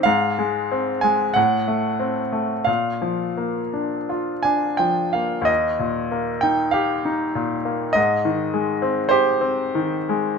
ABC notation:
X:1
M:4/4
L:1/16
Q:1/4=46
K:Eb
V:1 name="Grand piano"
f3 a ^f4 =f4 z a g f | e3 g f4 e4 c4 |]
V:2 name="Grand piano"
A,, A, C A, =A,, =A, C A, B,, F, B, D F D F, B, | E,, B,, B, E G E B,, B, A,, E, A, C G C E, A, |]